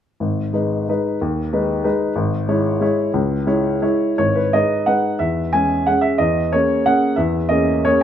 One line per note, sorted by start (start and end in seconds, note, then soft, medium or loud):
0.20 0.53 G#1 soft
0.53 0.84 G#3 soft
0.53 0.85 D#4 soft
0.53 0.85 B4 soft
0.89 1.18 G#3 soft
0.89 1.19 D#4 soft
0.89 1.19 B4 soft
1.21 1.52 D#2 soft
1.53 1.81 G#3 soft
1.53 1.81 D#4 soft
1.53 1.82 B4 soft
1.84 2.13 G#3 soft
1.84 2.13 D#4 soft
1.84 2.13 B4 soft
2.16 2.47 G#1 medium
2.48 2.78 G#3 soft
2.48 2.78 E4 soft
2.48 2.78 C#5 soft
2.81 3.11 G#3 soft
2.81 3.11 E4 soft
2.81 3.12 C#5 soft
3.14 3.46 C#2 medium
3.46 3.79 G#3 soft
3.46 3.79 E4 soft
3.46 3.79 C#5 soft
3.81 4.15 G#3 soft
3.81 4.15 E4 soft
3.81 4.16 C#5 soft
4.18 4.52 G#1 soft
4.18 4.36 C#5 medium
4.36 4.53 B4 soft
4.53 4.84 G#3 soft
4.53 4.85 D#4 soft
4.53 4.85 B4 soft
4.53 4.87 D#5 medium
4.86 5.17 G#3 soft
4.86 5.17 D#4 soft
4.86 5.18 B4 soft
4.86 5.20 F#5 medium
5.19 5.52 E2 soft
5.19 5.53 E5 medium
5.53 5.84 G#3 soft
5.53 5.84 C#4 soft
5.53 5.84 G#4 soft
5.53 5.87 G#5 medium
5.87 6.17 G#3 soft
5.87 6.17 C#4 soft
5.87 6.17 G#4 soft
5.87 6.04 F#5 medium
6.01 6.19 E5 medium
6.18 6.52 E2 soft
6.18 6.52 D#5 medium
6.52 6.83 A#3 soft
6.52 6.83 C#4 soft
6.52 6.83 G#4 soft
6.52 6.86 C#5 medium
6.86 7.15 A#3 soft
6.86 7.16 C#4 soft
6.86 7.16 G#4 soft
6.86 7.18 F#5 medium
7.16 7.50 E2 soft
7.16 7.51 E5 medium
7.49 7.82 A#3 soft
7.49 7.82 C#4 soft
7.49 7.83 G#4 soft
7.49 7.85 D#5 medium
7.85 8.03 A#3 soft
7.85 8.03 C#4 soft
7.85 8.03 G#4 soft
7.85 8.02 C#5 medium